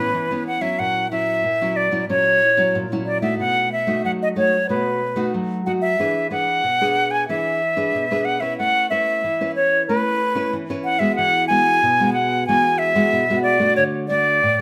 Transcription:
0.00 0.12 A2 medium
0.00 0.13 E3 medium
0.00 0.25 B3 medium
0.00 0.26 C#4 medium
0.00 0.44 B4 medium
0.14 0.30 E3 medium
0.31 0.58 E3 medium
0.31 0.59 B3 medium
0.31 0.59 C#4 medium
0.47 0.63 F#5 medium
0.61 1.06 F#3 medium
0.61 1.06 C#4 medium
0.61 1.06 E4 medium
0.61 0.81 E5 medium
0.79 1.41 A#2 medium
0.79 1.11 F#5 medium
1.11 1.42 F#3 medium
1.11 1.42 C#4 medium
1.11 1.43 E4 medium
1.11 1.78 E5 medium
1.44 2.06 A#2 medium
1.61 1.89 F#3 medium
1.61 1.89 C#4 medium
1.61 1.89 E4 medium
1.76 2.09 D5 medium
1.91 2.04 F#3 medium
1.91 2.04 C#4 medium
1.91 2.04 E4 medium
2.09 2.71 A#2 medium
2.09 2.40 F#3 medium
2.09 2.40 C#4 medium
2.09 2.41 E4 medium
2.09 2.76 C#5 medium
2.57 2.85 F#3 medium
2.57 2.85 C#4 medium
2.57 2.85 E4 medium
2.75 3.37 A#2 medium
2.92 3.19 F#3 medium
2.92 3.19 C#4 medium
2.92 3.19 E4 medium
3.06 3.21 D5 medium
3.22 3.66 A3 medium
3.22 3.66 D#4 medium
3.22 3.67 F#4 medium
3.22 3.38 E5 medium
3.39 4.01 B2 medium
3.39 3.70 F#5 medium
3.72 4.03 E5 medium
3.87 4.31 A3 medium
3.87 4.31 D#4 medium
3.87 4.32 F#4 medium
4.04 4.66 F#3 medium
4.04 4.11 F#5 medium
4.22 4.28 D#5 medium
4.36 4.56 A3 medium
4.36 4.56 D#4 soft
4.36 4.56 F#4 medium
4.36 4.67 C#5 medium
4.69 5.31 B2 medium
4.69 5.00 A3 soft
4.69 5.00 D#4 medium
4.69 5.00 F#4 medium
4.69 5.31 B4 medium
5.16 5.61 A3 medium
5.16 5.61 D#4 medium
5.16 5.61 F#4 medium
5.34 5.96 F#3 medium
5.66 5.86 A3 soft
5.66 5.86 D#4 soft
5.66 5.86 F#4 medium
5.66 5.72 F#5 medium
5.81 6.28 E5 medium
5.99 6.61 E3 medium
5.99 6.27 D4 medium
5.99 6.27 G#4 soft
5.99 6.27 B4 medium
6.31 6.62 D4 soft
6.31 6.62 G#4 soft
6.31 6.62 B4 medium
6.31 7.12 F#5 medium
6.64 7.26 B2 medium
6.81 7.24 D4 medium
6.81 7.25 G#4 medium
6.81 7.25 B4 medium
7.11 7.28 G#5 medium
7.28 7.91 E3 medium
7.28 7.60 D4 medium
7.28 7.60 G#4 soft
7.28 7.60 B4 medium
7.28 8.26 E5 medium
7.77 8.05 D4 medium
7.77 8.05 G#4 medium
7.77 8.05 B4 medium
7.95 8.56 B2 medium
8.11 8.38 D4 medium
8.11 8.38 G#4 medium
8.11 8.38 B4 medium
8.25 8.42 F#5 medium
8.40 8.86 C#4 medium
8.40 8.86 E4 medium
8.40 8.86 B4 medium
8.40 8.57 E5 medium
8.58 9.21 A3 medium
8.58 8.89 F#5 medium
8.90 9.22 C#4 soft
8.90 9.22 E4 soft
8.90 9.22 B4 medium
8.90 9.52 E5 medium
9.24 9.86 E3 medium
9.41 9.84 C#4 medium
9.41 9.84 E4 medium
9.41 9.84 B4 medium
9.56 9.86 C#5 medium
9.88 10.51 A3 medium
9.88 10.19 C#4 medium
9.88 10.20 E4 medium
9.88 10.55 B4 medium
9.88 10.20 B4 medium
10.35 10.64 C#4 medium
10.35 10.64 E4 medium
10.35 10.64 B4 medium
10.53 11.15 E3 medium
10.70 10.97 C#4 medium
10.70 10.97 E4 medium
10.70 10.98 B4 medium
10.84 11.01 F#5 medium
10.99 11.45 G#3 medium
10.99 11.45 B3 medium
10.99 11.45 F#4 medium
10.99 11.15 E5 medium
11.16 11.80 E3 medium
11.16 11.47 F#5 medium
11.48 11.81 G#3 soft
11.48 11.81 B3 medium
11.48 11.81 F#4 medium
11.48 12.10 G#5 medium
11.83 12.45 B2 medium
12.00 12.43 G#3 medium
12.00 12.44 B3 medium
12.00 12.44 F#4 medium
12.13 12.45 F#5 medium
12.47 13.10 E3 medium
12.47 12.92 G#3 medium
12.47 12.92 B3 medium
12.47 12.92 F#4 medium
12.47 12.80 G#5 loud
12.78 13.42 E5 loud
12.95 13.23 G#3 medium
12.95 13.23 B3 medium
12.95 13.24 F#4 medium
13.13 13.74 B2 medium
13.30 13.57 G#3 medium
13.30 13.57 B3 medium
13.30 13.57 F#4 medium
13.43 13.74 D5 medium
13.59 14.04 A3 medium
13.59 14.04 D4 medium
13.59 14.04 F#4 medium
13.76 14.39 D3 medium
13.76 13.84 C#5 medium
14.08 14.40 A3 medium
14.08 14.40 D4 medium
14.08 14.41 F#4 medium
14.08 14.61 D5 loud
14.43 14.61 A2 medium

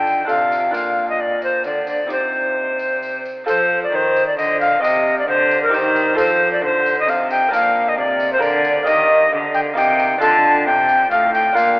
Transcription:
0.00 0.26 D3 medium
0.00 0.27 D3 medium
0.00 0.24 D4 soft
0.00 0.25 F4 soft
0.00 0.26 A4 medium
0.00 0.28 G5 medium
0.07 tambourine soft
0.25 0.69 D4 soft
0.25 0.70 F4 soft
0.25 0.72 A4 soft
0.29 0.70 C3 soft
0.29 0.75 C3 medium
0.29 0.73 F5 medium
0.29 tambourine soft
0.52 tambourine medium
0.71 1.66 A#2 medium
0.71 1.61 A#2 medium
0.71 2.05 D4 soft
0.71 2.05 F4 soft
0.71 2.06 A#4 soft
0.71 tambourine medium
0.75 1.08 F5 medium
1.10 1.22 D#5 medium
1.21 1.43 D5 medium
1.42 1.65 C5 medium
1.42 tambourine soft
1.64 2.09 D3 soft
1.64 2.07 D3 soft
1.64 1.88 D5 medium
1.64 tambourine soft
1.87 2.11 D5 medium
1.87 tambourine soft
2.06 3.25 C3 soft
2.06 3.23 C3 soft
2.06 3.41 C4 soft
2.06 3.42 D#4 soft
2.06 3.43 G4 soft
2.06 tambourine medium
2.12 3.23 C5 medium
2.79 tambourine soft
3.03 tambourine soft
3.25 tambourine medium
3.44 3.89 F3 medium
3.44 3.90 C4 medium
3.44 4.78 F4 medium
3.44 4.78 A4 soft
3.44 tambourine medium
3.48 3.80 C5 medium
3.84 3.97 D5 medium
3.92 4.36 D#3 medium
3.92 4.34 D#3 medium
3.92 4.26 C5 medium
4.16 tambourine soft
4.27 4.37 D5 medium
4.37 4.82 D3 medium
4.37 4.79 D3 medium
4.37 4.60 D#5 medium
4.37 tambourine medium
4.61 4.82 F5 medium
4.61 tambourine medium
4.79 5.27 C3 medium
4.79 5.24 C3 medium
4.79 5.67 C4 medium
4.79 5.69 G4 medium
4.79 5.69 D#5 medium
4.83 5.16 D#5 medium
4.83 tambourine medium
5.18 5.28 D5 medium
5.28 5.72 D3 medium
5.28 5.69 D3 medium
5.28 5.61 C5 medium
5.51 tambourine soft
5.63 5.76 A#4 medium
5.68 6.13 D#3 medium
5.68 6.13 C4 medium
5.68 6.14 D#4 medium
5.68 6.16 G4 medium
5.73 6.19 D#3 medium
5.73 6.19 C5 medium
5.73 tambourine medium
5.96 tambourine medium
6.14 6.64 F3 medium
6.14 6.59 F3 medium
6.14 6.59 C4 medium
6.14 7.47 F4 medium
6.14 7.47 A4 medium
6.18 6.51 C5 medium
6.18 tambourine medium
6.53 6.63 D5 medium
6.62 7.03 D3 medium
6.62 7.09 D3 medium
6.62 6.96 C5 loud
6.86 tambourine soft
7.00 7.11 D#5 medium
7.07 7.48 C3 medium
7.07 7.52 C3 medium
7.07 7.30 F5 medium
7.07 tambourine medium
7.30 7.52 G5 loud
7.30 tambourine medium
7.48 8.37 A#3 medium
7.48 8.38 D4 medium
7.48 8.39 A#4 medium
7.53 7.99 A#2 medium
7.53 7.93 A#2 medium
7.53 7.90 F5 medium
7.53 tambourine medium
7.89 7.98 D#5 medium
7.97 8.41 C3 medium
7.97 8.38 C3 medium
7.97 8.31 D5 medium
8.20 tambourine soft
8.33 8.42 C5 medium
8.38 8.86 D3 medium
8.38 8.83 D3 medium
8.38 8.82 A#3 medium
8.38 8.84 D4 medium
8.38 8.84 A#4 medium
8.42 8.89 D5 medium
8.42 tambourine medium
8.65 tambourine medium
8.83 9.28 D#3 medium
8.83 9.31 D#3 medium
8.83 9.28 A#3 medium
8.83 9.73 G4 medium
8.83 9.73 D#5 medium
8.83 tambourine medium
8.88 9.31 D#5 medium
9.31 9.75 D3 medium
9.31 9.73 D3 medium
9.54 9.60 G5 medium
9.54 tambourine soft
9.74 10.20 C3 medium
9.74 10.18 C3 medium
9.74 10.18 A#3 medium
9.74 10.19 D#4 medium
9.74 10.20 G4 medium
9.74 10.21 G5 loud
9.74 tambourine medium
10.00 tambourine medium
10.18 10.68 D3 medium
10.18 11.51 D4 medium
10.18 11.51 F4 medium
10.18 11.52 A4 medium
10.18 10.65 A5 loud
10.18 tambourine medium
10.22 10.63 D3 medium
10.66 11.10 C3 medium
10.66 11.08 C3 medium
10.66 11.10 G5 loud
10.89 tambourine soft
11.11 11.55 A2 medium
11.11 11.53 A2 medium
11.11 11.33 F5 loud
11.11 tambourine medium
11.34 11.57 G5 loud
11.34 tambourine medium
11.52 11.80 A#2 medium
11.52 11.80 D4 medium
11.52 11.80 F4 medium
11.52 11.80 A#4 medium
11.52 11.80 F5 medium
11.57 tambourine medium

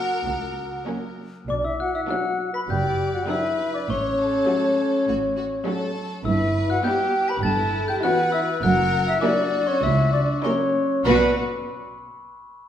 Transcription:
0.00 0.11 F#3 soft
0.00 0.11 A#3 medium
0.00 0.11 C#4 soft
0.00 0.83 F#4 medium
0.00 1.17 A#4 medium
0.00 0.83 F#5 medium
0.00 0.84 F#6 medium
0.26 0.74 C#2 medium
0.26 0.75 C#2 medium
0.86 1.33 F#3 soft
0.86 1.33 A#3 soft
0.86 1.32 C#4 soft
1.48 1.96 B1 medium
1.48 1.96 B2 medium
1.48 1.63 D4 medium
1.48 1.54 D5 medium
1.48 1.63 D6 medium
1.63 1.70 E4 soft
1.63 1.78 E5 medium
1.63 1.78 E6 soft
1.80 1.94 F#4 medium
1.80 1.94 F#5 medium
1.80 1.93 F#6 medium
1.94 2.01 E4 medium
1.94 2.01 E5 medium
1.94 2.08 E6 soft
2.07 2.54 F#3 medium
2.07 2.53 B3 medium
2.07 2.54 D4 soft
2.07 2.52 F#4 medium
2.07 2.53 F#5 medium
2.07 2.51 F#6 medium
2.54 2.60 B4 medium
2.54 2.60 B5 medium
2.54 2.68 B6 medium
2.68 3.16 F#1 medium
2.68 3.16 F#2 medium
2.68 3.12 G4 medium
2.68 3.25 D5 medium
2.68 3.16 G5 medium
2.68 3.11 G6 medium
3.13 3.20 F#4 soft
3.13 3.28 F#5 medium
3.13 3.28 F#6 soft
3.28 3.73 F#3 soft
3.28 3.73 B3 soft
3.28 3.73 D4 medium
3.28 3.73 E4 medium
3.28 3.88 B4 medium
3.28 3.72 E5 medium
3.28 3.71 E6 medium
3.73 3.80 D4 soft
3.73 3.80 D5 medium
3.73 3.87 D6 soft
3.88 4.35 A1 medium
3.88 4.35 A2 medium
3.88 5.92 C#4 medium
3.88 4.18 C#5 medium
3.88 5.92 C#5 medium
3.88 5.92 C#6 medium
4.18 5.07 A4 medium
4.47 4.92 F#3 medium
4.47 4.91 A3 medium
4.47 4.91 C#4 medium
4.47 4.91 F#4 soft
5.07 5.53 A1 medium
5.07 5.54 A2 medium
5.07 5.15 F#4 medium
5.36 5.44 F#4 soft
5.65 6.10 F#3 medium
5.65 6.10 A3 medium
5.65 6.10 C#4 medium
5.65 6.10 F#4 medium
5.65 6.24 A4 medium
6.23 6.72 G1 medium
6.23 6.72 G2 medium
6.23 6.65 E4 medium
6.23 6.83 B4 medium
6.23 6.67 E5 medium
6.23 6.66 E6 medium
6.70 6.76 F#4 medium
6.70 6.84 F#5 medium
6.70 6.83 F#6 medium
6.84 7.29 G3 medium
6.84 7.28 B3 medium
6.84 7.29 B3 medium
6.84 7.28 E4 medium
6.84 7.43 G4 medium
6.84 7.28 G4 medium
6.84 7.31 G5 medium
6.84 7.26 G6 medium
7.28 7.36 B4 medium
7.28 7.43 B5 medium
7.28 7.42 B6 medium
7.43 7.91 G1 medium
7.43 7.91 G2 medium
7.43 8.03 E4 medium
7.43 7.87 A4 medium
7.43 7.87 A5 medium
7.43 7.85 A6 medium
7.88 8.04 G4 medium
7.88 7.95 G5 medium
7.88 8.02 G6 medium
8.03 8.48 E3 medium
8.03 8.49 B3 medium
8.03 8.48 C#4 medium
8.03 8.48 E4 medium
8.03 8.17 F#4 medium
8.03 8.62 B4 medium
8.03 8.33 F#5 medium
8.03 8.31 F#6 medium
8.32 8.47 E4 medium
8.32 8.40 E5 medium
8.32 8.60 E6 medium
8.63 9.10 F#1 medium
8.63 9.10 F#2 medium
8.63 9.07 F#4 medium
8.63 9.21 A#4 medium
8.63 9.07 F#5 medium
8.63 9.04 F#6 medium
9.08 9.22 E4 medium
9.08 9.21 E5 medium
9.08 9.22 E6 medium
9.21 9.68 F#3 medium
9.21 9.68 A#3 medium
9.21 9.67 C#4 medium
9.21 9.69 D4 medium
9.21 9.68 E4 medium
9.21 10.41 F#4 medium
9.21 9.69 D5 medium
9.21 9.64 D6 medium
9.67 9.74 C#4 medium
9.67 9.85 C#5 medium
9.67 9.81 C#6 medium
9.83 10.31 C#2 medium
9.83 9.97 E4 medium
9.83 10.12 E5 medium
9.83 10.11 E6 medium
10.13 10.43 D4 medium
10.13 10.20 D5 medium
10.13 10.42 D6 medium
10.43 10.91 F#3 medium
10.43 10.91 A#3 medium
10.43 10.90 C#4 medium
10.43 11.05 C#4 medium
10.43 10.90 E4 medium
10.43 10.52 A#4 soft
10.43 11.05 C#5 medium
10.43 11.02 C#6 medium
11.05 11.39 B1 medium
11.05 11.40 B2 medium
11.05 11.31 B3 medium
11.05 11.40 F#4 medium
11.05 11.39 B4 medium
11.05 11.39 D5 medium
11.05 11.39 B5 medium

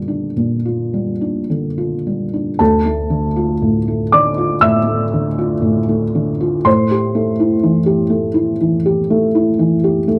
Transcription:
0.00 0.32 A#2 soft
0.00 1.50 D3 soft
0.00 0.93 G3 soft
0.00 0.08 D4 soft
0.00 0.65 F4 soft
0.00 1.48 G4 soft
0.08 0.54 D4 soft
0.36 2.55 A#2 soft
0.65 1.10 F4 soft
0.93 1.38 G3 soft
1.21 1.66 D4 soft
1.50 1.95 D3 soft
1.78 2.23 F4 soft
2.07 2.50 G3 soft
2.33 2.60 D4 soft
2.59 4.59 D2 soft
2.59 4.10 A4 soft
2.59 4.13 A5 medium
2.86 3.27 A3 soft
3.10 3.52 D3 soft
3.36 3.78 F4 soft
3.62 4.03 A2 soft
3.88 4.28 A3 soft
4.12 4.53 D3 soft
4.12 4.60 D5 soft
4.12 4.63 D6 medium
4.38 4.78 F4 soft
4.61 5.02 A2 soft
4.61 6.61 E5 medium
4.61 6.65 E6 medium
4.87 5.28 A3 soft
5.14 5.54 D3 soft
5.38 5.79 F4 soft
5.62 6.04 A2 soft
5.89 6.30 A3 soft
6.15 6.56 D3 soft
6.41 6.66 F4 soft
6.65 8.56 A2 medium
6.65 10.05 C5 medium
6.65 10.07 C6 medium
6.91 7.30 G4 soft
7.15 7.54 A3 soft
7.40 7.78 E4 soft
7.63 8.02 E3 soft
7.86 8.26 G4 soft
8.10 8.50 A3 soft
8.34 8.74 E4 soft
8.61 9.00 E3 soft
8.86 9.25 G4 soft
9.10 9.50 A3 soft
9.35 9.74 E4 soft
9.59 9.98 E3 soft
9.84 10.19 G4 soft
10.08 10.19 A3 soft

